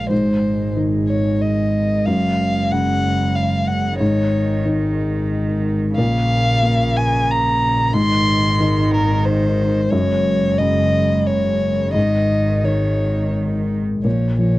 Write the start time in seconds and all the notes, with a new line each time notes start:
Already playing: A#1 A#2 F3
0.09 G#1 G#2 G#3 C5
0.76 D#3
1.08 C#5
1.41 D#5
2.06 F#1 F#2 F5
2.72 C#3 F#5
3.35 F5
3.67 F#5
3.98 G#1 G#2 D#3 C#5
4.65 D#3
5.96 A#1 A#2 C#3 F5
6.63 A#3
6.97 G#5
7.30 A#5
7.93 G#1 G#2 D#3 C6
8.60 D#3
8.94 A#4
9.25 C5
9.90 F#1 F#2 G#3 C#5
10.58 C#3 D#5
11.27 C#5
11.93 G#1 G#2 D#3 D#5
12.63 D#3 C#5
14.03 A#1 A#2 F3 C#5
14.37 F3 C#5